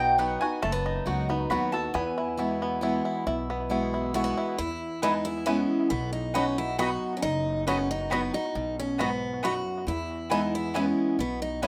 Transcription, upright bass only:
0, 0, Header, 1, 2, 480
1, 0, Start_track
1, 0, Key_signature, 4, "major"
1, 0, Tempo, 439883
1, 685, Time_signature, 3, 2, 24, 8
1, 12734, End_track
2, 0, Start_track
2, 0, Title_t, "Upright bass"
2, 0, Program_c, 0, 32
2, 0, Note_on_c, 0, 35, 107
2, 391, Note_off_c, 0, 35, 0
2, 689, Note_on_c, 0, 30, 94
2, 1070, Note_off_c, 0, 30, 0
2, 1162, Note_on_c, 0, 37, 87
2, 1572, Note_off_c, 0, 37, 0
2, 1639, Note_on_c, 0, 39, 96
2, 2050, Note_off_c, 0, 39, 0
2, 2124, Note_on_c, 0, 40, 100
2, 3272, Note_off_c, 0, 40, 0
2, 3565, Note_on_c, 0, 35, 95
2, 4714, Note_off_c, 0, 35, 0
2, 5006, Note_on_c, 0, 40, 91
2, 6155, Note_off_c, 0, 40, 0
2, 6447, Note_on_c, 0, 35, 101
2, 7596, Note_off_c, 0, 35, 0
2, 7894, Note_on_c, 0, 30, 91
2, 9040, Note_off_c, 0, 30, 0
2, 9332, Note_on_c, 0, 35, 92
2, 10478, Note_off_c, 0, 35, 0
2, 10771, Note_on_c, 0, 40, 100
2, 11916, Note_off_c, 0, 40, 0
2, 12207, Note_on_c, 0, 35, 91
2, 12734, Note_off_c, 0, 35, 0
2, 12734, End_track
0, 0, End_of_file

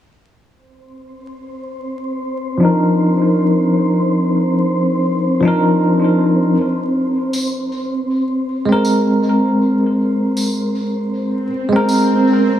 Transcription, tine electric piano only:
0, 0, Header, 1, 2, 480
1, 0, Start_track
1, 0, Key_signature, -3, "minor"
1, 0, Tempo, 759494
1, 315, Time_signature, 4, 2, 24, 8
1, 7961, End_track
2, 0, Start_track
2, 0, Title_t, "Tine electric piano"
2, 0, Program_c, 0, 4
2, 1628, Note_on_c, 0, 53, 66
2, 1643, Note_on_c, 0, 62, 64
2, 1660, Note_on_c, 0, 63, 64
2, 1673, Note_on_c, 0, 70, 76
2, 3399, Note_off_c, 0, 53, 0
2, 3407, Note_off_c, 0, 62, 0
2, 3415, Note_off_c, 0, 63, 0
2, 3416, Note_on_c, 0, 53, 72
2, 3422, Note_off_c, 0, 70, 0
2, 3430, Note_on_c, 0, 62, 72
2, 3445, Note_on_c, 0, 63, 70
2, 3461, Note_on_c, 0, 70, 84
2, 4133, Note_off_c, 0, 53, 0
2, 4140, Note_off_c, 0, 62, 0
2, 4148, Note_off_c, 0, 63, 0
2, 4155, Note_off_c, 0, 70, 0
2, 5469, Note_on_c, 0, 56, 75
2, 5491, Note_on_c, 0, 60, 64
2, 5513, Note_on_c, 0, 70, 83
2, 7240, Note_off_c, 0, 56, 0
2, 7251, Note_off_c, 0, 60, 0
2, 7262, Note_off_c, 0, 70, 0
2, 7387, Note_on_c, 0, 56, 81
2, 7411, Note_on_c, 0, 60, 75
2, 7432, Note_on_c, 0, 70, 93
2, 7961, Note_off_c, 0, 56, 0
2, 7961, Note_off_c, 0, 60, 0
2, 7961, Note_off_c, 0, 70, 0
2, 7961, End_track
0, 0, End_of_file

